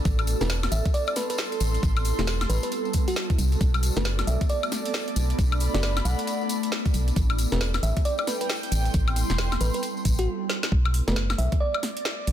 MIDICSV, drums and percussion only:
0, 0, Header, 1, 2, 480
1, 0, Start_track
1, 0, Tempo, 444444
1, 56, Time_signature, 4, 2, 24, 8
1, 13307, End_track
2, 0, Start_track
2, 0, Title_t, "Drums"
2, 55, Note_on_c, 9, 54, 50
2, 56, Note_on_c, 9, 42, 59
2, 57, Note_on_c, 9, 36, 122
2, 163, Note_off_c, 9, 54, 0
2, 164, Note_off_c, 9, 42, 0
2, 165, Note_off_c, 9, 36, 0
2, 202, Note_on_c, 9, 54, 26
2, 204, Note_on_c, 9, 76, 57
2, 293, Note_off_c, 9, 54, 0
2, 293, Note_on_c, 9, 54, 88
2, 296, Note_on_c, 9, 46, 104
2, 312, Note_off_c, 9, 76, 0
2, 401, Note_off_c, 9, 54, 0
2, 404, Note_off_c, 9, 46, 0
2, 439, Note_on_c, 9, 54, 43
2, 445, Note_on_c, 9, 40, 67
2, 445, Note_on_c, 9, 42, 36
2, 537, Note_off_c, 9, 54, 0
2, 537, Note_on_c, 9, 38, 116
2, 537, Note_on_c, 9, 54, 59
2, 553, Note_off_c, 9, 40, 0
2, 553, Note_off_c, 9, 42, 0
2, 645, Note_off_c, 9, 38, 0
2, 645, Note_off_c, 9, 54, 0
2, 682, Note_on_c, 9, 54, 28
2, 684, Note_on_c, 9, 40, 69
2, 684, Note_on_c, 9, 42, 59
2, 684, Note_on_c, 9, 76, 74
2, 774, Note_off_c, 9, 54, 0
2, 774, Note_on_c, 9, 54, 104
2, 776, Note_on_c, 9, 46, 106
2, 792, Note_off_c, 9, 40, 0
2, 792, Note_off_c, 9, 42, 0
2, 792, Note_off_c, 9, 76, 0
2, 882, Note_off_c, 9, 54, 0
2, 884, Note_off_c, 9, 46, 0
2, 922, Note_on_c, 9, 54, 38
2, 923, Note_on_c, 9, 42, 60
2, 924, Note_on_c, 9, 36, 113
2, 1014, Note_off_c, 9, 54, 0
2, 1014, Note_on_c, 9, 54, 56
2, 1017, Note_off_c, 9, 42, 0
2, 1017, Note_on_c, 9, 42, 62
2, 1032, Note_off_c, 9, 36, 0
2, 1122, Note_off_c, 9, 54, 0
2, 1125, Note_off_c, 9, 42, 0
2, 1153, Note_on_c, 9, 54, 27
2, 1163, Note_on_c, 9, 76, 57
2, 1252, Note_off_c, 9, 54, 0
2, 1252, Note_on_c, 9, 54, 92
2, 1256, Note_on_c, 9, 40, 55
2, 1256, Note_on_c, 9, 46, 105
2, 1271, Note_off_c, 9, 76, 0
2, 1360, Note_off_c, 9, 54, 0
2, 1364, Note_off_c, 9, 40, 0
2, 1364, Note_off_c, 9, 46, 0
2, 1400, Note_on_c, 9, 54, 42
2, 1403, Note_on_c, 9, 42, 62
2, 1490, Note_off_c, 9, 54, 0
2, 1490, Note_on_c, 9, 54, 61
2, 1496, Note_on_c, 9, 38, 119
2, 1511, Note_off_c, 9, 42, 0
2, 1598, Note_off_c, 9, 54, 0
2, 1604, Note_off_c, 9, 38, 0
2, 1643, Note_on_c, 9, 54, 26
2, 1644, Note_on_c, 9, 42, 45
2, 1732, Note_off_c, 9, 54, 0
2, 1732, Note_on_c, 9, 54, 95
2, 1737, Note_on_c, 9, 46, 104
2, 1752, Note_off_c, 9, 42, 0
2, 1840, Note_off_c, 9, 54, 0
2, 1845, Note_off_c, 9, 46, 0
2, 1884, Note_on_c, 9, 42, 34
2, 1887, Note_on_c, 9, 54, 37
2, 1976, Note_off_c, 9, 42, 0
2, 1976, Note_on_c, 9, 36, 115
2, 1976, Note_on_c, 9, 42, 63
2, 1978, Note_off_c, 9, 54, 0
2, 1978, Note_on_c, 9, 54, 53
2, 2084, Note_off_c, 9, 36, 0
2, 2084, Note_off_c, 9, 42, 0
2, 2086, Note_off_c, 9, 54, 0
2, 2119, Note_on_c, 9, 54, 26
2, 2124, Note_on_c, 9, 76, 59
2, 2212, Note_off_c, 9, 54, 0
2, 2212, Note_on_c, 9, 54, 91
2, 2217, Note_on_c, 9, 46, 101
2, 2232, Note_off_c, 9, 76, 0
2, 2320, Note_off_c, 9, 54, 0
2, 2325, Note_off_c, 9, 46, 0
2, 2362, Note_on_c, 9, 54, 38
2, 2364, Note_on_c, 9, 40, 65
2, 2364, Note_on_c, 9, 42, 36
2, 2456, Note_on_c, 9, 38, 123
2, 2465, Note_off_c, 9, 54, 0
2, 2465, Note_on_c, 9, 54, 51
2, 2472, Note_off_c, 9, 40, 0
2, 2472, Note_off_c, 9, 42, 0
2, 2564, Note_off_c, 9, 38, 0
2, 2573, Note_off_c, 9, 54, 0
2, 2604, Note_on_c, 9, 40, 64
2, 2604, Note_on_c, 9, 42, 62
2, 2604, Note_on_c, 9, 76, 76
2, 2615, Note_on_c, 9, 54, 25
2, 2696, Note_on_c, 9, 46, 99
2, 2698, Note_off_c, 9, 54, 0
2, 2698, Note_on_c, 9, 54, 86
2, 2712, Note_off_c, 9, 40, 0
2, 2712, Note_off_c, 9, 42, 0
2, 2712, Note_off_c, 9, 76, 0
2, 2804, Note_off_c, 9, 46, 0
2, 2806, Note_off_c, 9, 54, 0
2, 2838, Note_on_c, 9, 54, 42
2, 2843, Note_on_c, 9, 42, 59
2, 2934, Note_off_c, 9, 54, 0
2, 2934, Note_on_c, 9, 54, 53
2, 2936, Note_off_c, 9, 42, 0
2, 2936, Note_on_c, 9, 42, 66
2, 3042, Note_off_c, 9, 54, 0
2, 3044, Note_off_c, 9, 42, 0
2, 3080, Note_on_c, 9, 54, 27
2, 3168, Note_off_c, 9, 54, 0
2, 3168, Note_on_c, 9, 54, 93
2, 3175, Note_on_c, 9, 46, 104
2, 3177, Note_on_c, 9, 36, 66
2, 3276, Note_off_c, 9, 54, 0
2, 3283, Note_off_c, 9, 46, 0
2, 3285, Note_off_c, 9, 36, 0
2, 3323, Note_on_c, 9, 42, 61
2, 3326, Note_on_c, 9, 54, 37
2, 3415, Note_off_c, 9, 54, 0
2, 3415, Note_on_c, 9, 54, 58
2, 3416, Note_on_c, 9, 38, 116
2, 3431, Note_off_c, 9, 42, 0
2, 3523, Note_off_c, 9, 54, 0
2, 3524, Note_off_c, 9, 38, 0
2, 3563, Note_on_c, 9, 42, 48
2, 3564, Note_on_c, 9, 36, 111
2, 3564, Note_on_c, 9, 54, 29
2, 3656, Note_on_c, 9, 46, 104
2, 3658, Note_off_c, 9, 54, 0
2, 3658, Note_on_c, 9, 54, 98
2, 3671, Note_off_c, 9, 42, 0
2, 3672, Note_off_c, 9, 36, 0
2, 3764, Note_off_c, 9, 46, 0
2, 3766, Note_off_c, 9, 54, 0
2, 3803, Note_on_c, 9, 42, 33
2, 3807, Note_on_c, 9, 54, 40
2, 3896, Note_off_c, 9, 42, 0
2, 3896, Note_on_c, 9, 42, 65
2, 3897, Note_on_c, 9, 36, 116
2, 3900, Note_off_c, 9, 54, 0
2, 3900, Note_on_c, 9, 54, 52
2, 4004, Note_off_c, 9, 42, 0
2, 4005, Note_off_c, 9, 36, 0
2, 4008, Note_off_c, 9, 54, 0
2, 4042, Note_on_c, 9, 54, 27
2, 4043, Note_on_c, 9, 76, 64
2, 4135, Note_on_c, 9, 46, 105
2, 4137, Note_off_c, 9, 54, 0
2, 4137, Note_on_c, 9, 54, 92
2, 4151, Note_off_c, 9, 76, 0
2, 4243, Note_off_c, 9, 46, 0
2, 4245, Note_off_c, 9, 54, 0
2, 4280, Note_on_c, 9, 54, 36
2, 4284, Note_on_c, 9, 40, 61
2, 4284, Note_on_c, 9, 42, 36
2, 4372, Note_off_c, 9, 54, 0
2, 4372, Note_on_c, 9, 54, 52
2, 4375, Note_on_c, 9, 38, 118
2, 4392, Note_off_c, 9, 40, 0
2, 4392, Note_off_c, 9, 42, 0
2, 4480, Note_off_c, 9, 54, 0
2, 4483, Note_off_c, 9, 38, 0
2, 4521, Note_on_c, 9, 54, 26
2, 4523, Note_on_c, 9, 40, 65
2, 4523, Note_on_c, 9, 42, 68
2, 4523, Note_on_c, 9, 76, 79
2, 4615, Note_on_c, 9, 46, 99
2, 4620, Note_off_c, 9, 54, 0
2, 4620, Note_on_c, 9, 54, 89
2, 4631, Note_off_c, 9, 40, 0
2, 4631, Note_off_c, 9, 42, 0
2, 4631, Note_off_c, 9, 76, 0
2, 4723, Note_off_c, 9, 46, 0
2, 4728, Note_off_c, 9, 54, 0
2, 4763, Note_on_c, 9, 42, 62
2, 4764, Note_on_c, 9, 36, 101
2, 4764, Note_on_c, 9, 54, 34
2, 4851, Note_off_c, 9, 54, 0
2, 4851, Note_on_c, 9, 54, 50
2, 4855, Note_off_c, 9, 42, 0
2, 4855, Note_on_c, 9, 42, 68
2, 4872, Note_off_c, 9, 36, 0
2, 4959, Note_off_c, 9, 54, 0
2, 4963, Note_off_c, 9, 42, 0
2, 5003, Note_on_c, 9, 76, 64
2, 5006, Note_on_c, 9, 54, 27
2, 5096, Note_off_c, 9, 54, 0
2, 5096, Note_on_c, 9, 54, 96
2, 5097, Note_on_c, 9, 40, 50
2, 5097, Note_on_c, 9, 46, 103
2, 5111, Note_off_c, 9, 76, 0
2, 5204, Note_off_c, 9, 54, 0
2, 5205, Note_off_c, 9, 40, 0
2, 5205, Note_off_c, 9, 46, 0
2, 5243, Note_on_c, 9, 42, 69
2, 5248, Note_on_c, 9, 54, 37
2, 5331, Note_off_c, 9, 54, 0
2, 5331, Note_on_c, 9, 54, 47
2, 5336, Note_on_c, 9, 38, 109
2, 5351, Note_off_c, 9, 42, 0
2, 5439, Note_off_c, 9, 54, 0
2, 5444, Note_off_c, 9, 38, 0
2, 5480, Note_on_c, 9, 54, 24
2, 5484, Note_on_c, 9, 42, 50
2, 5574, Note_off_c, 9, 54, 0
2, 5574, Note_on_c, 9, 54, 89
2, 5576, Note_on_c, 9, 46, 105
2, 5592, Note_off_c, 9, 42, 0
2, 5682, Note_off_c, 9, 54, 0
2, 5684, Note_off_c, 9, 46, 0
2, 5724, Note_on_c, 9, 42, 37
2, 5731, Note_on_c, 9, 54, 36
2, 5817, Note_off_c, 9, 42, 0
2, 5817, Note_off_c, 9, 54, 0
2, 5817, Note_on_c, 9, 36, 120
2, 5817, Note_on_c, 9, 42, 67
2, 5817, Note_on_c, 9, 54, 51
2, 5925, Note_off_c, 9, 36, 0
2, 5925, Note_off_c, 9, 42, 0
2, 5925, Note_off_c, 9, 54, 0
2, 5964, Note_on_c, 9, 76, 63
2, 5968, Note_on_c, 9, 54, 26
2, 6049, Note_off_c, 9, 54, 0
2, 6049, Note_on_c, 9, 54, 92
2, 6057, Note_on_c, 9, 46, 110
2, 6072, Note_off_c, 9, 76, 0
2, 6157, Note_off_c, 9, 54, 0
2, 6165, Note_off_c, 9, 46, 0
2, 6203, Note_on_c, 9, 54, 40
2, 6204, Note_on_c, 9, 40, 66
2, 6204, Note_on_c, 9, 42, 39
2, 6296, Note_off_c, 9, 54, 0
2, 6296, Note_on_c, 9, 54, 45
2, 6297, Note_on_c, 9, 38, 117
2, 6312, Note_off_c, 9, 40, 0
2, 6312, Note_off_c, 9, 42, 0
2, 6404, Note_off_c, 9, 54, 0
2, 6405, Note_off_c, 9, 38, 0
2, 6444, Note_on_c, 9, 40, 63
2, 6444, Note_on_c, 9, 42, 66
2, 6444, Note_on_c, 9, 76, 82
2, 6451, Note_on_c, 9, 54, 28
2, 6536, Note_off_c, 9, 54, 0
2, 6536, Note_on_c, 9, 54, 92
2, 6537, Note_on_c, 9, 46, 104
2, 6552, Note_off_c, 9, 40, 0
2, 6552, Note_off_c, 9, 42, 0
2, 6552, Note_off_c, 9, 76, 0
2, 6644, Note_off_c, 9, 54, 0
2, 6645, Note_off_c, 9, 46, 0
2, 6681, Note_on_c, 9, 54, 36
2, 6683, Note_on_c, 9, 42, 65
2, 6774, Note_off_c, 9, 54, 0
2, 6774, Note_on_c, 9, 54, 47
2, 6776, Note_off_c, 9, 42, 0
2, 6776, Note_on_c, 9, 42, 68
2, 6882, Note_off_c, 9, 54, 0
2, 6884, Note_off_c, 9, 42, 0
2, 6924, Note_on_c, 9, 54, 25
2, 7013, Note_off_c, 9, 54, 0
2, 7013, Note_on_c, 9, 54, 93
2, 7016, Note_on_c, 9, 46, 102
2, 7121, Note_off_c, 9, 54, 0
2, 7124, Note_off_c, 9, 46, 0
2, 7163, Note_on_c, 9, 42, 72
2, 7163, Note_on_c, 9, 54, 40
2, 7254, Note_off_c, 9, 54, 0
2, 7254, Note_on_c, 9, 54, 49
2, 7256, Note_on_c, 9, 38, 110
2, 7271, Note_off_c, 9, 42, 0
2, 7362, Note_off_c, 9, 54, 0
2, 7364, Note_off_c, 9, 38, 0
2, 7404, Note_on_c, 9, 36, 101
2, 7404, Note_on_c, 9, 42, 50
2, 7409, Note_on_c, 9, 54, 27
2, 7492, Note_off_c, 9, 54, 0
2, 7492, Note_on_c, 9, 54, 84
2, 7496, Note_on_c, 9, 46, 111
2, 7512, Note_off_c, 9, 36, 0
2, 7512, Note_off_c, 9, 42, 0
2, 7600, Note_off_c, 9, 54, 0
2, 7604, Note_off_c, 9, 46, 0
2, 7643, Note_on_c, 9, 42, 36
2, 7645, Note_on_c, 9, 54, 36
2, 7736, Note_off_c, 9, 42, 0
2, 7736, Note_on_c, 9, 42, 69
2, 7737, Note_on_c, 9, 36, 111
2, 7742, Note_off_c, 9, 54, 0
2, 7742, Note_on_c, 9, 54, 53
2, 7844, Note_off_c, 9, 42, 0
2, 7845, Note_off_c, 9, 36, 0
2, 7850, Note_off_c, 9, 54, 0
2, 7882, Note_on_c, 9, 54, 22
2, 7882, Note_on_c, 9, 76, 60
2, 7975, Note_off_c, 9, 54, 0
2, 7975, Note_on_c, 9, 54, 87
2, 7976, Note_on_c, 9, 46, 111
2, 7990, Note_off_c, 9, 76, 0
2, 8083, Note_off_c, 9, 54, 0
2, 8084, Note_off_c, 9, 46, 0
2, 8123, Note_on_c, 9, 40, 62
2, 8123, Note_on_c, 9, 42, 40
2, 8125, Note_on_c, 9, 54, 38
2, 8216, Note_on_c, 9, 38, 118
2, 8227, Note_off_c, 9, 54, 0
2, 8227, Note_on_c, 9, 54, 52
2, 8231, Note_off_c, 9, 40, 0
2, 8231, Note_off_c, 9, 42, 0
2, 8324, Note_off_c, 9, 38, 0
2, 8335, Note_off_c, 9, 54, 0
2, 8357, Note_on_c, 9, 54, 26
2, 8362, Note_on_c, 9, 40, 64
2, 8362, Note_on_c, 9, 42, 65
2, 8362, Note_on_c, 9, 76, 79
2, 8455, Note_on_c, 9, 46, 108
2, 8459, Note_off_c, 9, 54, 0
2, 8459, Note_on_c, 9, 54, 81
2, 8470, Note_off_c, 9, 40, 0
2, 8470, Note_off_c, 9, 42, 0
2, 8470, Note_off_c, 9, 76, 0
2, 8563, Note_off_c, 9, 46, 0
2, 8567, Note_off_c, 9, 54, 0
2, 8603, Note_on_c, 9, 42, 67
2, 8604, Note_on_c, 9, 36, 94
2, 8604, Note_on_c, 9, 54, 33
2, 8695, Note_off_c, 9, 42, 0
2, 8695, Note_on_c, 9, 42, 69
2, 8699, Note_off_c, 9, 54, 0
2, 8699, Note_on_c, 9, 54, 52
2, 8712, Note_off_c, 9, 36, 0
2, 8803, Note_off_c, 9, 42, 0
2, 8807, Note_off_c, 9, 54, 0
2, 8831, Note_on_c, 9, 54, 28
2, 8843, Note_on_c, 9, 76, 58
2, 8935, Note_off_c, 9, 54, 0
2, 8935, Note_on_c, 9, 40, 54
2, 8935, Note_on_c, 9, 46, 106
2, 8935, Note_on_c, 9, 54, 77
2, 8951, Note_off_c, 9, 76, 0
2, 9043, Note_off_c, 9, 40, 0
2, 9043, Note_off_c, 9, 46, 0
2, 9043, Note_off_c, 9, 54, 0
2, 9079, Note_on_c, 9, 54, 37
2, 9082, Note_on_c, 9, 42, 67
2, 9173, Note_off_c, 9, 54, 0
2, 9173, Note_on_c, 9, 54, 54
2, 9175, Note_on_c, 9, 38, 109
2, 9190, Note_off_c, 9, 42, 0
2, 9281, Note_off_c, 9, 54, 0
2, 9283, Note_off_c, 9, 38, 0
2, 9323, Note_on_c, 9, 42, 53
2, 9324, Note_on_c, 9, 54, 22
2, 9416, Note_on_c, 9, 46, 111
2, 9419, Note_off_c, 9, 54, 0
2, 9419, Note_on_c, 9, 54, 93
2, 9431, Note_off_c, 9, 42, 0
2, 9524, Note_off_c, 9, 46, 0
2, 9527, Note_off_c, 9, 54, 0
2, 9563, Note_on_c, 9, 42, 38
2, 9569, Note_on_c, 9, 54, 42
2, 9651, Note_off_c, 9, 54, 0
2, 9651, Note_on_c, 9, 54, 54
2, 9655, Note_off_c, 9, 42, 0
2, 9655, Note_on_c, 9, 42, 70
2, 9657, Note_on_c, 9, 36, 113
2, 9759, Note_off_c, 9, 54, 0
2, 9763, Note_off_c, 9, 42, 0
2, 9765, Note_off_c, 9, 36, 0
2, 9798, Note_on_c, 9, 54, 24
2, 9802, Note_on_c, 9, 76, 60
2, 9894, Note_off_c, 9, 54, 0
2, 9894, Note_on_c, 9, 54, 89
2, 9895, Note_on_c, 9, 46, 111
2, 9910, Note_off_c, 9, 76, 0
2, 10002, Note_off_c, 9, 54, 0
2, 10003, Note_off_c, 9, 46, 0
2, 10042, Note_on_c, 9, 54, 36
2, 10043, Note_on_c, 9, 40, 68
2, 10043, Note_on_c, 9, 42, 38
2, 10135, Note_on_c, 9, 38, 114
2, 10136, Note_off_c, 9, 54, 0
2, 10136, Note_on_c, 9, 54, 46
2, 10151, Note_off_c, 9, 40, 0
2, 10151, Note_off_c, 9, 42, 0
2, 10243, Note_off_c, 9, 38, 0
2, 10244, Note_off_c, 9, 54, 0
2, 10282, Note_on_c, 9, 40, 66
2, 10282, Note_on_c, 9, 42, 66
2, 10282, Note_on_c, 9, 76, 79
2, 10285, Note_on_c, 9, 54, 24
2, 10374, Note_off_c, 9, 54, 0
2, 10374, Note_on_c, 9, 54, 91
2, 10375, Note_on_c, 9, 46, 113
2, 10390, Note_off_c, 9, 40, 0
2, 10390, Note_off_c, 9, 42, 0
2, 10390, Note_off_c, 9, 76, 0
2, 10482, Note_off_c, 9, 54, 0
2, 10483, Note_off_c, 9, 46, 0
2, 10515, Note_on_c, 9, 54, 39
2, 10522, Note_on_c, 9, 42, 66
2, 10614, Note_off_c, 9, 42, 0
2, 10614, Note_on_c, 9, 42, 71
2, 10618, Note_off_c, 9, 54, 0
2, 10618, Note_on_c, 9, 54, 49
2, 10722, Note_off_c, 9, 42, 0
2, 10726, Note_off_c, 9, 54, 0
2, 10767, Note_on_c, 9, 54, 28
2, 10855, Note_on_c, 9, 46, 109
2, 10856, Note_off_c, 9, 54, 0
2, 10856, Note_on_c, 9, 54, 78
2, 10857, Note_on_c, 9, 36, 60
2, 10963, Note_off_c, 9, 46, 0
2, 10964, Note_off_c, 9, 54, 0
2, 10965, Note_off_c, 9, 36, 0
2, 10996, Note_on_c, 9, 54, 38
2, 11002, Note_on_c, 9, 42, 69
2, 11104, Note_off_c, 9, 54, 0
2, 11110, Note_off_c, 9, 42, 0
2, 11335, Note_on_c, 9, 38, 63
2, 11443, Note_off_c, 9, 38, 0
2, 11482, Note_on_c, 9, 38, 71
2, 11577, Note_on_c, 9, 36, 117
2, 11590, Note_off_c, 9, 38, 0
2, 11685, Note_off_c, 9, 36, 0
2, 11723, Note_on_c, 9, 76, 56
2, 11815, Note_on_c, 9, 46, 111
2, 11831, Note_off_c, 9, 76, 0
2, 11923, Note_off_c, 9, 46, 0
2, 11963, Note_on_c, 9, 40, 69
2, 11963, Note_on_c, 9, 42, 64
2, 12056, Note_on_c, 9, 38, 118
2, 12071, Note_off_c, 9, 40, 0
2, 12071, Note_off_c, 9, 42, 0
2, 12164, Note_off_c, 9, 38, 0
2, 12203, Note_on_c, 9, 40, 66
2, 12203, Note_on_c, 9, 42, 36
2, 12203, Note_on_c, 9, 76, 75
2, 12296, Note_on_c, 9, 46, 111
2, 12311, Note_off_c, 9, 40, 0
2, 12311, Note_off_c, 9, 42, 0
2, 12311, Note_off_c, 9, 76, 0
2, 12404, Note_off_c, 9, 46, 0
2, 12443, Note_on_c, 9, 42, 61
2, 12444, Note_on_c, 9, 36, 104
2, 12551, Note_off_c, 9, 42, 0
2, 12552, Note_off_c, 9, 36, 0
2, 12684, Note_on_c, 9, 76, 57
2, 12776, Note_on_c, 9, 40, 59
2, 12776, Note_on_c, 9, 46, 113
2, 12792, Note_off_c, 9, 76, 0
2, 12884, Note_off_c, 9, 40, 0
2, 12884, Note_off_c, 9, 46, 0
2, 12924, Note_on_c, 9, 42, 67
2, 13016, Note_on_c, 9, 38, 118
2, 13032, Note_off_c, 9, 42, 0
2, 13124, Note_off_c, 9, 38, 0
2, 13256, Note_on_c, 9, 46, 114
2, 13307, Note_off_c, 9, 46, 0
2, 13307, End_track
0, 0, End_of_file